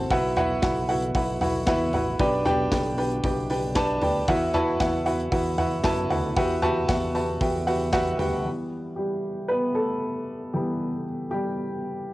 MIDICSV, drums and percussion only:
0, 0, Header, 1, 2, 480
1, 0, Start_track
1, 0, Key_signature, 1, "minor"
1, 0, Tempo, 521648
1, 98, Time_signature, 4, 2, 24, 8
1, 11166, End_track
2, 0, Start_track
2, 0, Title_t, "Drums"
2, 94, Note_on_c, 9, 44, 62
2, 95, Note_on_c, 9, 46, 87
2, 96, Note_on_c, 9, 36, 99
2, 186, Note_off_c, 9, 44, 0
2, 187, Note_off_c, 9, 46, 0
2, 188, Note_off_c, 9, 36, 0
2, 334, Note_on_c, 9, 46, 78
2, 335, Note_on_c, 9, 44, 63
2, 338, Note_on_c, 9, 43, 67
2, 426, Note_off_c, 9, 46, 0
2, 427, Note_off_c, 9, 44, 0
2, 430, Note_off_c, 9, 43, 0
2, 574, Note_on_c, 9, 38, 110
2, 574, Note_on_c, 9, 44, 60
2, 575, Note_on_c, 9, 46, 79
2, 577, Note_on_c, 9, 36, 107
2, 666, Note_off_c, 9, 38, 0
2, 666, Note_off_c, 9, 44, 0
2, 667, Note_off_c, 9, 46, 0
2, 670, Note_off_c, 9, 36, 0
2, 695, Note_on_c, 9, 46, 52
2, 787, Note_off_c, 9, 46, 0
2, 816, Note_on_c, 9, 44, 64
2, 817, Note_on_c, 9, 46, 67
2, 908, Note_off_c, 9, 44, 0
2, 909, Note_off_c, 9, 46, 0
2, 934, Note_on_c, 9, 44, 68
2, 1026, Note_off_c, 9, 44, 0
2, 1052, Note_on_c, 9, 44, 69
2, 1056, Note_on_c, 9, 36, 100
2, 1056, Note_on_c, 9, 46, 104
2, 1144, Note_off_c, 9, 44, 0
2, 1148, Note_off_c, 9, 36, 0
2, 1148, Note_off_c, 9, 46, 0
2, 1295, Note_on_c, 9, 44, 68
2, 1297, Note_on_c, 9, 43, 72
2, 1298, Note_on_c, 9, 46, 80
2, 1387, Note_off_c, 9, 44, 0
2, 1389, Note_off_c, 9, 43, 0
2, 1390, Note_off_c, 9, 46, 0
2, 1533, Note_on_c, 9, 38, 111
2, 1534, Note_on_c, 9, 44, 60
2, 1536, Note_on_c, 9, 36, 106
2, 1536, Note_on_c, 9, 46, 92
2, 1625, Note_off_c, 9, 38, 0
2, 1626, Note_off_c, 9, 44, 0
2, 1628, Note_off_c, 9, 36, 0
2, 1628, Note_off_c, 9, 46, 0
2, 1776, Note_on_c, 9, 44, 66
2, 1776, Note_on_c, 9, 46, 70
2, 1777, Note_on_c, 9, 43, 67
2, 1868, Note_off_c, 9, 44, 0
2, 1868, Note_off_c, 9, 46, 0
2, 1869, Note_off_c, 9, 43, 0
2, 2019, Note_on_c, 9, 36, 113
2, 2019, Note_on_c, 9, 44, 70
2, 2020, Note_on_c, 9, 46, 89
2, 2111, Note_off_c, 9, 36, 0
2, 2111, Note_off_c, 9, 44, 0
2, 2112, Note_off_c, 9, 46, 0
2, 2257, Note_on_c, 9, 46, 76
2, 2259, Note_on_c, 9, 44, 61
2, 2261, Note_on_c, 9, 43, 67
2, 2349, Note_off_c, 9, 46, 0
2, 2351, Note_off_c, 9, 44, 0
2, 2353, Note_off_c, 9, 43, 0
2, 2499, Note_on_c, 9, 44, 65
2, 2500, Note_on_c, 9, 36, 101
2, 2500, Note_on_c, 9, 38, 112
2, 2500, Note_on_c, 9, 46, 83
2, 2591, Note_off_c, 9, 44, 0
2, 2592, Note_off_c, 9, 36, 0
2, 2592, Note_off_c, 9, 38, 0
2, 2592, Note_off_c, 9, 46, 0
2, 2620, Note_on_c, 9, 46, 52
2, 2712, Note_off_c, 9, 46, 0
2, 2740, Note_on_c, 9, 44, 60
2, 2740, Note_on_c, 9, 46, 72
2, 2832, Note_off_c, 9, 44, 0
2, 2832, Note_off_c, 9, 46, 0
2, 2858, Note_on_c, 9, 44, 72
2, 2950, Note_off_c, 9, 44, 0
2, 2977, Note_on_c, 9, 44, 66
2, 2978, Note_on_c, 9, 36, 109
2, 2980, Note_on_c, 9, 46, 94
2, 3069, Note_off_c, 9, 44, 0
2, 3070, Note_off_c, 9, 36, 0
2, 3073, Note_off_c, 9, 46, 0
2, 3215, Note_on_c, 9, 44, 67
2, 3218, Note_on_c, 9, 46, 82
2, 3307, Note_off_c, 9, 44, 0
2, 3310, Note_off_c, 9, 46, 0
2, 3332, Note_on_c, 9, 46, 53
2, 3424, Note_off_c, 9, 46, 0
2, 3453, Note_on_c, 9, 38, 120
2, 3454, Note_on_c, 9, 44, 69
2, 3455, Note_on_c, 9, 36, 108
2, 3455, Note_on_c, 9, 46, 93
2, 3545, Note_off_c, 9, 38, 0
2, 3546, Note_off_c, 9, 44, 0
2, 3547, Note_off_c, 9, 36, 0
2, 3547, Note_off_c, 9, 46, 0
2, 3573, Note_on_c, 9, 44, 65
2, 3665, Note_off_c, 9, 44, 0
2, 3694, Note_on_c, 9, 44, 63
2, 3695, Note_on_c, 9, 43, 62
2, 3695, Note_on_c, 9, 46, 73
2, 3786, Note_off_c, 9, 44, 0
2, 3787, Note_off_c, 9, 43, 0
2, 3787, Note_off_c, 9, 46, 0
2, 3935, Note_on_c, 9, 44, 70
2, 3936, Note_on_c, 9, 46, 84
2, 3938, Note_on_c, 9, 36, 110
2, 4027, Note_off_c, 9, 44, 0
2, 4028, Note_off_c, 9, 46, 0
2, 4030, Note_off_c, 9, 36, 0
2, 4173, Note_on_c, 9, 46, 80
2, 4174, Note_on_c, 9, 44, 64
2, 4177, Note_on_c, 9, 43, 67
2, 4265, Note_off_c, 9, 46, 0
2, 4266, Note_off_c, 9, 44, 0
2, 4269, Note_off_c, 9, 43, 0
2, 4417, Note_on_c, 9, 38, 109
2, 4417, Note_on_c, 9, 44, 61
2, 4418, Note_on_c, 9, 46, 85
2, 4419, Note_on_c, 9, 36, 114
2, 4509, Note_off_c, 9, 38, 0
2, 4509, Note_off_c, 9, 44, 0
2, 4510, Note_off_c, 9, 46, 0
2, 4511, Note_off_c, 9, 36, 0
2, 4539, Note_on_c, 9, 46, 53
2, 4631, Note_off_c, 9, 46, 0
2, 4655, Note_on_c, 9, 44, 68
2, 4656, Note_on_c, 9, 46, 74
2, 4747, Note_off_c, 9, 44, 0
2, 4748, Note_off_c, 9, 46, 0
2, 4775, Note_on_c, 9, 44, 70
2, 4867, Note_off_c, 9, 44, 0
2, 4892, Note_on_c, 9, 44, 67
2, 4895, Note_on_c, 9, 36, 103
2, 4896, Note_on_c, 9, 46, 95
2, 4984, Note_off_c, 9, 44, 0
2, 4987, Note_off_c, 9, 36, 0
2, 4988, Note_off_c, 9, 46, 0
2, 5132, Note_on_c, 9, 44, 66
2, 5135, Note_on_c, 9, 43, 71
2, 5136, Note_on_c, 9, 46, 78
2, 5224, Note_off_c, 9, 44, 0
2, 5227, Note_off_c, 9, 43, 0
2, 5228, Note_off_c, 9, 46, 0
2, 5249, Note_on_c, 9, 46, 47
2, 5341, Note_off_c, 9, 46, 0
2, 5370, Note_on_c, 9, 38, 116
2, 5371, Note_on_c, 9, 44, 66
2, 5372, Note_on_c, 9, 46, 102
2, 5373, Note_on_c, 9, 36, 116
2, 5462, Note_off_c, 9, 38, 0
2, 5463, Note_off_c, 9, 44, 0
2, 5464, Note_off_c, 9, 46, 0
2, 5465, Note_off_c, 9, 36, 0
2, 5493, Note_on_c, 9, 44, 65
2, 5585, Note_off_c, 9, 44, 0
2, 5615, Note_on_c, 9, 44, 62
2, 5615, Note_on_c, 9, 46, 76
2, 5616, Note_on_c, 9, 43, 64
2, 5707, Note_off_c, 9, 44, 0
2, 5707, Note_off_c, 9, 46, 0
2, 5708, Note_off_c, 9, 43, 0
2, 5856, Note_on_c, 9, 44, 63
2, 5857, Note_on_c, 9, 36, 108
2, 5857, Note_on_c, 9, 46, 83
2, 5948, Note_off_c, 9, 44, 0
2, 5949, Note_off_c, 9, 36, 0
2, 5949, Note_off_c, 9, 46, 0
2, 6092, Note_on_c, 9, 46, 75
2, 6094, Note_on_c, 9, 44, 62
2, 6096, Note_on_c, 9, 43, 65
2, 6184, Note_off_c, 9, 46, 0
2, 6186, Note_off_c, 9, 44, 0
2, 6188, Note_off_c, 9, 43, 0
2, 6335, Note_on_c, 9, 38, 102
2, 6335, Note_on_c, 9, 44, 61
2, 6336, Note_on_c, 9, 46, 83
2, 6338, Note_on_c, 9, 36, 112
2, 6427, Note_off_c, 9, 38, 0
2, 6427, Note_off_c, 9, 44, 0
2, 6428, Note_off_c, 9, 46, 0
2, 6430, Note_off_c, 9, 36, 0
2, 6576, Note_on_c, 9, 44, 65
2, 6576, Note_on_c, 9, 46, 70
2, 6668, Note_off_c, 9, 44, 0
2, 6668, Note_off_c, 9, 46, 0
2, 6816, Note_on_c, 9, 36, 103
2, 6816, Note_on_c, 9, 44, 66
2, 6819, Note_on_c, 9, 46, 99
2, 6908, Note_off_c, 9, 36, 0
2, 6908, Note_off_c, 9, 44, 0
2, 6911, Note_off_c, 9, 46, 0
2, 7057, Note_on_c, 9, 44, 68
2, 7060, Note_on_c, 9, 46, 77
2, 7149, Note_off_c, 9, 44, 0
2, 7152, Note_off_c, 9, 46, 0
2, 7174, Note_on_c, 9, 46, 51
2, 7266, Note_off_c, 9, 46, 0
2, 7294, Note_on_c, 9, 38, 111
2, 7295, Note_on_c, 9, 36, 107
2, 7295, Note_on_c, 9, 44, 63
2, 7296, Note_on_c, 9, 46, 97
2, 7386, Note_off_c, 9, 38, 0
2, 7387, Note_off_c, 9, 44, 0
2, 7388, Note_off_c, 9, 36, 0
2, 7388, Note_off_c, 9, 46, 0
2, 7416, Note_on_c, 9, 44, 67
2, 7508, Note_off_c, 9, 44, 0
2, 7537, Note_on_c, 9, 44, 62
2, 7537, Note_on_c, 9, 46, 75
2, 7538, Note_on_c, 9, 43, 63
2, 7629, Note_off_c, 9, 44, 0
2, 7630, Note_off_c, 9, 43, 0
2, 7630, Note_off_c, 9, 46, 0
2, 11166, End_track
0, 0, End_of_file